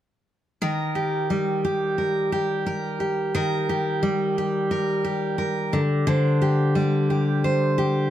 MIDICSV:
0, 0, Header, 1, 2, 480
1, 0, Start_track
1, 0, Key_signature, -3, "major"
1, 0, Tempo, 683605
1, 424, Time_signature, 4, 2, 24, 8
1, 5688, End_track
2, 0, Start_track
2, 0, Title_t, "Steel-string acoustic guitar"
2, 0, Program_c, 0, 25
2, 433, Note_on_c, 0, 51, 67
2, 436, Note_on_c, 0, 70, 55
2, 669, Note_on_c, 0, 67, 45
2, 914, Note_on_c, 0, 55, 44
2, 1152, Note_off_c, 0, 67, 0
2, 1155, Note_on_c, 0, 67, 51
2, 1382, Note_off_c, 0, 70, 0
2, 1390, Note_on_c, 0, 70, 45
2, 1628, Note_off_c, 0, 67, 0
2, 1631, Note_on_c, 0, 67, 47
2, 1862, Note_off_c, 0, 70, 0
2, 1871, Note_on_c, 0, 70, 48
2, 2104, Note_off_c, 0, 67, 0
2, 2106, Note_on_c, 0, 67, 45
2, 2341, Note_off_c, 0, 51, 0
2, 2347, Note_off_c, 0, 70, 0
2, 2349, Note_on_c, 0, 51, 67
2, 2355, Note_on_c, 0, 70, 55
2, 2591, Note_off_c, 0, 67, 0
2, 2593, Note_on_c, 0, 67, 45
2, 2825, Note_off_c, 0, 55, 0
2, 2827, Note_on_c, 0, 55, 47
2, 3072, Note_off_c, 0, 67, 0
2, 3075, Note_on_c, 0, 67, 47
2, 3298, Note_off_c, 0, 70, 0
2, 3306, Note_on_c, 0, 70, 53
2, 3540, Note_off_c, 0, 67, 0
2, 3543, Note_on_c, 0, 67, 45
2, 3770, Note_off_c, 0, 70, 0
2, 3779, Note_on_c, 0, 70, 47
2, 4023, Note_on_c, 0, 50, 61
2, 4074, Note_off_c, 0, 70, 0
2, 4079, Note_off_c, 0, 51, 0
2, 4255, Note_off_c, 0, 50, 0
2, 4262, Note_on_c, 0, 50, 71
2, 4269, Note_on_c, 0, 72, 50
2, 4502, Note_off_c, 0, 67, 0
2, 4505, Note_on_c, 0, 67, 48
2, 4739, Note_off_c, 0, 55, 0
2, 4742, Note_on_c, 0, 55, 50
2, 4983, Note_off_c, 0, 67, 0
2, 4986, Note_on_c, 0, 67, 45
2, 5217, Note_off_c, 0, 72, 0
2, 5226, Note_on_c, 0, 72, 50
2, 5459, Note_off_c, 0, 67, 0
2, 5462, Note_on_c, 0, 67, 53
2, 5688, Note_off_c, 0, 50, 0
2, 5688, Note_off_c, 0, 55, 0
2, 5688, Note_off_c, 0, 67, 0
2, 5688, Note_off_c, 0, 72, 0
2, 5688, End_track
0, 0, End_of_file